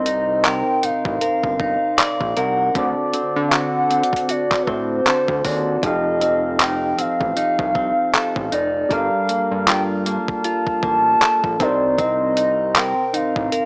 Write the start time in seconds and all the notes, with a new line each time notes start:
Already playing: C2 C3 C4 D#4 A#4 C5 D#5
0.06 D#4, closed hi-hat
0.44 A#4 G5, clap, closed hi-hat
0.83 A1 D#4 F5, closed hi-hat
1.05 A1, kick
1.21 G1 A#4, closed hi-hat
1.44 G1, kick
1.60 D#4, kick
1.98 D5, clap, closed hi-hat
2.21 A#1, kick
2.37 C2 A#4 F#5, closed hi-hat
2.74 D2 D3 C4 F#4 A4, kick, closed hi-hat
2.78 D5
3.14 D3 C4, closed hi-hat
3.36 D3
3.48 F5
3.52 F#4 F#5, clap, closed hi-hat
3.90 C4, closed hi-hat
4.03 closed hi-hat
4.13 kick, closed hi-hat
4.29 F#4 D5, closed hi-hat
4.51 kick, clap
4.63 B4
4.67 A2 C4 C5, kick
5.06 D3 C4 F#4 A4 C5, clap, closed hi-hat
5.28 D2, kick
5.45 D#2 F#4 D5, kick, open hi-hat
5.82 F1 F3 D#4 G4 A4 D#5, kick, closed hi-hat
5.86 F5
6.21 C4, closed hi-hat
6.60 D#4 G5, clap, closed hi-hat
6.98 A1 C4 F5, closed hi-hat
7.21 A1, kick
7.37 C2 D#4, closed hi-hat
7.59 C2, kick
7.75 C4, kick
8.14 A4, clap, closed hi-hat
8.36 A1, kick
8.52 F1 D#4 D5, closed hi-hat
8.89 G1 G3 D4 A4 A#4 F5, kick, closed hi-hat
8.93 F5
9.29 G2 A#3, closed hi-hat
9.51 G2
9.67 F4 G5, clap, closed hi-hat
10.06 A#3 A5, closed hi-hat
10.28 kick
10.44 F4, closed hi-hat
10.67 kick
10.83 A1 A#3, kick
11.22 A4, clap, closed hi-hat
11.44 A#1, kick
11.59 C2 C3 C4 D#4 A#4 D5, kick, closed hi-hat
11.63 C5
11.98 C4 D#5, kick, closed hi-hat
12.37 D#4, closed hi-hat
12.75 A#4 G5, clap, closed hi-hat
13.14 A1 D#4 F5, closed hi-hat
13.36 A1, kick
13.52 G1 A#4, closed hi-hat